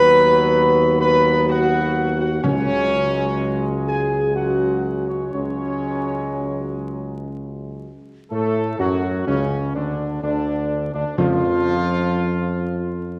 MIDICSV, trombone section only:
0, 0, Header, 1, 2, 480
1, 0, Start_track
1, 0, Tempo, 955414
1, 1226, Time_signature, 3, 2, 24, 8
1, 2191, Tempo, 990099
1, 4111, Tempo, 950872
1, 6570, End_track
2, 0, Start_track
2, 0, Title_t, "Trombone section"
2, 0, Program_c, 0, 61
2, 0, Note_on_c, 0, 54, 97
2, 0, Note_on_c, 0, 59, 87
2, 1138, Note_off_c, 0, 54, 0
2, 1138, Note_off_c, 0, 59, 0
2, 1224, Note_on_c, 0, 54, 85
2, 1226, Note_on_c, 0, 56, 90
2, 2168, Note_off_c, 0, 54, 0
2, 2169, Note_off_c, 0, 56, 0
2, 2192, Note_on_c, 0, 54, 70
2, 2192, Note_on_c, 0, 56, 73
2, 2646, Note_off_c, 0, 54, 0
2, 2646, Note_off_c, 0, 56, 0
2, 2665, Note_on_c, 0, 56, 78
2, 2667, Note_on_c, 0, 54, 78
2, 3929, Note_off_c, 0, 56, 0
2, 3930, Note_off_c, 0, 54, 0
2, 4107, Note_on_c, 0, 57, 99
2, 4334, Note_off_c, 0, 57, 0
2, 4347, Note_on_c, 0, 54, 88
2, 4574, Note_off_c, 0, 54, 0
2, 4590, Note_on_c, 0, 49, 80
2, 4817, Note_off_c, 0, 49, 0
2, 4840, Note_on_c, 0, 50, 78
2, 5062, Note_off_c, 0, 50, 0
2, 5078, Note_on_c, 0, 50, 81
2, 5416, Note_off_c, 0, 50, 0
2, 5434, Note_on_c, 0, 50, 74
2, 5488, Note_off_c, 0, 50, 0
2, 5557, Note_on_c, 0, 53, 96
2, 6570, Note_off_c, 0, 53, 0
2, 6570, End_track
0, 0, End_of_file